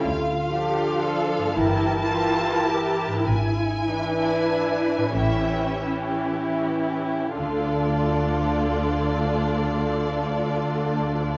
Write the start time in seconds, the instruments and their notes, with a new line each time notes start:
Already playing: harp D3 D4 F4
0.00 double bass section D2, harp A4, violin section F5
0.04 cello section F4
0.53 viola section F3 D4, violin section F4 A4, cello section G4
1.04 cello section A4
1.38 harp G2
1.43 harp A#3
1.47 harp E4
1.52 harp A#4
1.56 double bass section G1, viola section E3 E4, cello section E4, violin section G4 A#4 A5
2.09 viola section E3 E4, cello section F4, violin section G4 A#4
2.66 cello section G4
3.06 harp G#2
3.11 harp D4
3.15 harp E4
3.20 harp B4
3.25 double bass section G#1, cello section E4, violin section G#5
3.86 viola section E3 D4, violin section E4 B4
4.98 harp A2
5.02 harp C#4
5.07 harp E4
5.11 harp G4
5.15 double bass section A1, viola section E3 C#4, cello section C#4, violin section E4 G4 E5
5.87 viola section E3 C#4, violin section E4 G4
7.38 double bass section D2, cello section D2, viola section D3 D4, harp D3, violin section F4 A4 D5
7.46 harp D4
7.52 harp F4
7.60 harp A4
7.67 harp F5